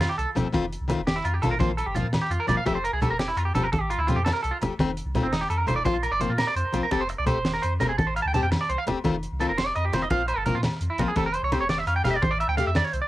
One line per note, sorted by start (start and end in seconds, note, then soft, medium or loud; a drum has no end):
0.00 0.09 F4 medium
0.00 snare medium
0.00 closed hi-hat medium
0.00 high conga medium
0.00 low agogo medium
0.09 0.17 G4 medium
0.18 0.26 C2 medium
0.18 0.29 A4 medium
0.18 closed hi-hat soft
0.35 0.44 F1 medium
0.35 0.46 F3 medium
0.35 0.47 A3 medium
0.35 0.47 C4 medium
0.35 0.47 G4 medium
0.35 closed hi-hat soft
0.35 low conga medium
0.35 low agogo medium
0.52 0.76 F1 medium
0.52 0.64 D#3 medium
0.52 0.64 A3 medium
0.52 0.65 C4 medium
0.52 0.65 F4 medium
0.52 kick medium
0.52 closed hi-hat medium
0.52 high conga medium
0.52 low agogo medium
0.73 closed hi-hat soft
0.81 0.96 C2 medium
0.88 0.99 D#3 medium
0.88 1.00 A3 medium
0.88 1.00 C4 medium
0.88 1.01 F4 medium
0.88 closed hi-hat soft
0.88 low conga medium
0.88 low agogo medium
0.98 1.21 F1 medium
1.07 1.16 G4 medium
1.07 snare medium
1.07 closed hi-hat medium
1.07 high conga medium
1.16 1.25 E4 medium
1.24 1.40 F2 medium
1.24 1.34 F4 medium
1.24 closed hi-hat soft
1.24 low agogo medium
1.34 1.43 G4 medium
1.42 1.57 A1 medium
1.42 1.53 D#3 medium
1.42 1.54 A3 medium
1.42 1.54 C4 medium
1.42 1.54 F4 medium
1.42 1.51 A4 medium
1.42 closed hi-hat medium
1.42 low conga medium
1.42 low agogo medium
1.51 1.60 A#4 medium
1.59 1.82 A#1 loud
1.59 1.71 F3 medium
1.59 1.71 A#3 medium
1.59 1.71 C4 medium
1.59 1.71 F4 medium
1.59 1.69 C5 medium
1.59 kick medium
1.59 closed hi-hat medium
1.59 high conga medium
1.77 1.86 A4 medium
1.77 closed hi-hat medium
1.77 low agogo medium
1.86 2.02 G1 medium
1.86 1.95 G4 medium
1.86 low conga soft
1.95 2.06 F3 medium
1.95 2.06 A#3 medium
1.95 2.07 C4 medium
1.95 2.06 F4 medium
1.95 2.07 F4 medium
1.95 closed hi-hat soft
1.95 low conga medium
2.04 2.19 A#2 loud
2.13 snare medium
2.13 closed hi-hat medium
2.13 high conga medium
2.13 low agogo medium
2.22 2.31 G4 medium
2.30 2.38 F2 medium
2.30 2.40 F4 medium
2.30 closed hi-hat soft
2.40 2.48 A#4 medium
2.48 2.56 G1 medium
2.48 2.59 F3 medium
2.48 2.60 A#3 medium
2.48 2.60 C4 medium
2.48 2.60 F4 medium
2.48 2.57 D5 loud
2.48 closed hi-hat soft
2.48 low conga loud
2.48 low agogo medium
2.57 2.66 F5 loud
2.66 2.89 F1 medium
2.66 2.77 F3 medium
2.66 2.77 A3 medium
2.66 2.77 C4 medium
2.66 2.78 G4 medium
2.66 2.75 E5 medium
2.66 kick medium
2.66 closed hi-hat medium
2.66 high conga medium
2.66 low agogo medium
2.75 2.84 C5 medium
2.84 2.93 A#4 medium
2.84 closed hi-hat soft
2.93 3.08 C2 medium
2.93 3.02 G#4 medium
3.01 3.12 F3 medium
3.01 3.13 A3 medium
3.01 3.13 C4 medium
3.01 3.13 G4 medium
3.01 3.10 A4 medium
3.01 closed hi-hat soft
3.01 low conga medium
3.01 low agogo medium
3.10 3.33 F1 medium
3.10 3.19 A#4 medium
3.19 3.28 G4 medium
3.19 snare medium
3.19 closed hi-hat medium
3.19 high conga medium
3.28 3.37 E4 medium
3.36 3.52 F2 medium
3.36 3.45 F4 medium
3.36 closed hi-hat medium
3.36 low agogo medium
3.45 3.54 G4 medium
3.55 3.70 F1 loud
3.55 3.66 F3 medium
3.55 3.66 C4 medium
3.55 3.67 G4 medium
3.55 3.63 A4 medium
3.55 muted steel-string acoustic guitar stroke medium
3.55 closed hi-hat medium
3.55 low conga medium
3.55 low agogo medium
3.63 3.72 A#4 medium
3.72 3.95 A1 loud
3.72 3.81 A4 medium
3.72 kick medium
3.72 closed hi-hat medium
3.72 high conga loud
3.81 3.90 G4 medium
3.90 3.99 F4 medium
3.90 closed hi-hat soft
3.90 low agogo medium
3.98 4.13 D2 medium
3.98 4.08 E4 medium
3.98 low conga soft
4.07 4.19 F3 medium
4.07 4.19 A3 medium
4.07 4.19 C4 medium
4.07 4.17 F4 medium
4.07 4.20 G4 medium
4.07 closed hi-hat medium
4.07 low conga medium
4.16 4.32 F2 medium
4.16 4.24 G4 medium
4.25 4.33 A4 medium
4.25 snare medium
4.25 closed hi-hat medium
4.25 high conga medium
4.25 low agogo medium
4.33 4.42 A#4 medium
4.43 4.51 C2 medium
4.43 4.52 A4 medium
4.43 closed hi-hat soft
4.51 4.57 F4 medium
4.61 4.69 F1 medium
4.61 4.72 F3 soft
4.61 4.73 A3 medium
4.61 4.73 G4 medium
4.61 closed hi-hat soft
4.61 low conga loud
4.61 low agogo medium
4.79 5.01 F1 medium
4.79 4.90 D#3 medium
4.79 4.90 A3 medium
4.79 4.90 C4 medium
4.79 4.91 F4 medium
4.79 kick medium
4.79 closed hi-hat medium
4.79 high conga medium
4.79 low agogo medium
4.97 closed hi-hat medium
5.05 5.20 C2 medium
5.05 low conga soft
5.14 5.25 D#3 medium
5.14 5.26 A3 medium
5.14 5.26 C4 medium
5.14 5.27 F4 medium
5.14 kick medium
5.14 closed hi-hat soft
5.14 low conga medium
5.14 low agogo medium
5.23 5.45 F1 medium
5.23 5.32 C4 medium
5.32 5.41 D#4 medium
5.32 snare medium
5.32 closed hi-hat medium
5.32 high conga medium
5.41 5.49 G4 medium
5.41 low conga soft
5.50 5.65 F2 medium
5.50 5.58 A4 medium
5.50 closed hi-hat soft
5.50 low conga soft
5.50 low agogo medium
5.58 5.67 A#4 medium
5.58 low conga soft
5.66 5.82 F1 medium
5.66 5.78 D#3 medium
5.66 5.78 A3 medium
5.66 5.79 F4 medium
5.66 5.76 C5 medium
5.66 closed hi-hat soft
5.66 low conga medium
5.66 low agogo medium
5.76 5.85 D5 medium
5.85 6.08 A#1 loud
5.85 5.96 F3 medium
5.85 5.96 A#3 medium
5.85 5.96 C4 medium
5.85 5.96 F4 medium
5.85 5.94 C5 medium
5.85 kick medium
5.85 closed hi-hat medium
5.85 high conga medium
5.94 6.03 F4 medium
5.94 low conga soft
6.03 6.12 A#4 medium
6.03 closed hi-hat soft
6.03 low conga soft
6.03 low agogo medium
6.11 6.27 G1 medium
6.11 6.21 D5 loud
6.20 6.31 F3 soft
6.20 6.31 A#3 medium
6.20 6.32 C4 medium
6.20 6.32 F4 medium
6.20 6.29 C5 medium
6.20 closed hi-hat soft
6.20 low conga medium
6.29 6.44 A#2 medium
6.29 6.38 F4 medium
6.29 low conga soft
6.38 6.47 A#4 loud
6.38 snare medium
6.38 closed hi-hat medium
6.38 high conga medium
6.38 low agogo medium
6.47 6.56 D5 loud
6.55 6.63 F2 medium
6.55 6.81 C5 medium
6.55 closed hi-hat soft
6.65 low conga soft
6.73 6.81 A#1 medium
6.73 6.84 F3 medium
6.73 6.84 A#3 medium
6.73 6.85 C4 medium
6.73 6.85 F4 medium
6.73 closed hi-hat soft
6.73 low conga medium
6.73 low agogo medium
6.83 6.92 A#4 medium
6.83 low conga soft
6.91 7.14 F1 loud
6.91 7.02 A3 medium
6.91 7.02 C4 medium
6.91 7.03 G4 medium
6.91 7.01 A4 medium
6.91 kick medium
6.91 closed hi-hat medium
6.91 high conga medium
6.91 low agogo medium
7.01 7.09 C5 medium
7.09 muted clean electric guitar stroke loud
7.09 closed hi-hat medium
7.18 7.33 C2 medium
7.18 7.26 D5 medium
7.26 7.37 A3 medium
7.26 7.38 C4 medium
7.26 7.38 G4 medium
7.26 7.52 C5 medium
7.26 closed hi-hat medium
7.26 low conga medium
7.26 low agogo medium
7.37 7.59 F1 medium
7.45 snare medium
7.45 closed hi-hat medium
7.45 high conga medium
7.54 7.62 A#4 medium
7.62 7.78 F2 medium
7.62 7.73 C5 medium
7.62 closed hi-hat medium
7.62 low agogo medium
7.80 7.96 F1 medium
7.80 7.91 A3 medium
7.80 7.91 C4 medium
7.80 7.92 G4 medium
7.80 7.89 A#4 medium
7.80 closed hi-hat medium
7.80 low conga medium
7.80 low agogo medium
7.89 7.98 G#4 medium
7.98 8.20 A1 loud
7.98 8.07 A4 medium
7.98 kick medium
7.98 closed hi-hat medium
7.98 high conga medium
8.07 8.15 C5 medium
8.16 8.22 F5 medium
8.16 closed hi-hat medium
8.16 low agogo medium
8.22 8.40 D2 medium
8.22 8.27 A5 loud
8.22 low conga soft
8.28 8.33 G5 medium
8.33 8.44 A3 medium
8.33 8.45 C4 medium
8.33 8.45 G4 medium
8.33 8.42 A5 loud
8.33 closed hi-hat soft
8.33 low conga medium
8.42 8.57 F2 medium
8.42 8.51 G5 medium
8.51 muted clean electric guitar stroke loud
8.51 snare medium
8.51 closed hi-hat medium
8.51 high conga medium
8.51 low agogo medium
8.61 8.69 D5 medium
8.69 8.76 C2 medium
8.69 8.78 C5 medium
8.69 closed hi-hat soft
8.78 8.83 F5 medium
8.87 8.95 F1 medium
8.87 8.97 A3 soft
8.87 8.98 C4 medium
8.87 8.98 G4 medium
8.87 closed hi-hat soft
8.87 low conga loud
8.87 low agogo medium
9.04 9.27 F1 loud
9.04 9.15 D#3 medium
9.04 9.15 A3 medium
9.04 9.15 C4 medium
9.04 9.15 F4 medium
9.04 kick medium
9.04 closed hi-hat medium
9.04 high conga medium
9.04 low agogo medium
9.23 closed hi-hat soft
9.32 9.46 C2 medium
9.40 9.50 D#3 medium
9.40 9.51 A3 medium
9.40 9.51 C4 medium
9.40 9.51 F4 medium
9.40 9.49 A4 medium
9.40 closed hi-hat soft
9.40 low agogo medium
9.49 9.71 F1 medium
9.49 9.57 A#4 medium
9.58 9.66 C5 medium
9.58 snare medium
9.58 closed hi-hat medium
9.58 high conga medium
9.66 9.75 D5 medium
9.75 9.90 F2 medium
9.75 9.84 D#5 medium
9.75 closed hi-hat soft
9.75 low agogo medium
9.85 9.93 G4 medium
9.92 10.07 F1 medium
9.92 10.03 D#3 medium
9.92 10.04 A3 medium
9.92 10.04 C4 medium
9.92 10.04 F4 medium
9.92 10.02 C5 medium
9.92 snare soft
9.92 closed hi-hat soft
9.92 low conga medium
9.92 low agogo medium
10.02 10.10 D#5 medium
10.10 10.33 A#1 loud
10.10 10.21 F3 medium
10.10 10.21 A#3 medium
10.10 10.22 C4 medium
10.10 10.21 F4 medium
10.10 10.28 F5 medium
10.10 kick medium
10.10 closed hi-hat medium
10.10 high conga medium
10.28 10.37 C5 medium
10.28 closed hi-hat medium
10.28 low agogo medium
10.36 10.51 G1 medium
10.36 10.45 A4 medium
10.36 low conga soft
10.46 10.57 F3 medium
10.46 10.57 A#3 medium
10.46 10.57 C4 medium
10.46 10.58 F4 medium
10.46 10.54 A#4 loud
10.46 closed hi-hat medium
10.46 low conga medium
10.54 10.69 A#2 medium
10.54 10.60 F4 medium
10.63 snare medium
10.63 closed hi-hat medium
10.63 high conga medium
10.63 low agogo medium
10.81 10.88 F2 loud
10.81 closed hi-hat soft
10.90 10.99 E4 medium
10.98 11.06 A#1 medium
10.98 11.10 F3 medium
10.98 11.10 A#3 medium
10.98 11.10 C4 medium
10.98 11.08 F4 medium
10.98 11.11 F4 medium
10.98 closed hi-hat medium
10.98 low conga medium
10.98 low agogo medium
11.08 11.16 G#4 medium
11.16 11.39 F1 medium
11.16 11.27 A3 medium
11.16 11.28 C4 medium
11.16 11.28 G4 medium
11.16 11.25 A4 medium
11.16 kick medium
11.16 closed hi-hat medium
11.16 high conga medium
11.16 low agogo medium
11.26 11.35 A#4 medium
11.34 11.43 C5 medium
11.34 closed hi-hat medium
11.42 11.58 C2 medium
11.42 11.52 C#5 loud
11.52 11.63 A3 medium
11.52 11.63 C4 medium
11.52 11.64 G4 medium
11.52 11.60 C5 medium
11.52 closed hi-hat medium
11.52 low conga medium
11.52 low agogo medium
11.60 11.83 F1 medium
11.60 11.69 C#5 medium
11.69 11.78 D5 medium
11.69 snare medium
11.69 closed hi-hat medium
11.69 high conga medium
11.78 11.87 E5 medium
11.86 12.02 F2 medium
11.86 11.95 F5 medium
11.86 closed hi-hat soft
11.86 low agogo medium
11.96 12.04 G5 loud
12.04 12.19 F1 medium
12.04 12.15 A3 medium
12.04 12.16 C4 medium
12.04 12.17 G4 medium
12.04 12.10 F5 loud
12.04 snare soft
12.04 closed hi-hat soft
12.04 low conga medium
12.04 low agogo medium
12.11 12.16 E5 medium
12.16 12.22 D5 medium
12.22 12.45 A1 loud
12.22 12.31 C5 medium
12.22 kick medium
12.22 closed hi-hat medium
12.22 high conga loud
12.31 12.40 D5 medium
12.40 12.49 E5 medium
12.40 closed hi-hat soft
12.40 low agogo medium
12.48 12.63 D2 medium
12.48 12.57 G5 loud
12.48 low conga soft
12.57 12.68 A3 medium
12.57 12.70 G4 medium
12.57 12.66 F5 medium
12.57 closed hi-hat medium
12.57 low conga medium
12.67 12.82 F2 medium
12.67 12.76 E5 medium
12.75 12.84 D5 loud
12.75 snare medium
12.75 closed hi-hat medium
12.75 high conga medium
12.75 low agogo medium
12.84 12.93 C#5 medium
12.93 13.01 C2 medium
12.93 13.01 C5 medium
12.93 closed hi-hat soft
13.02 13.08 D5 medium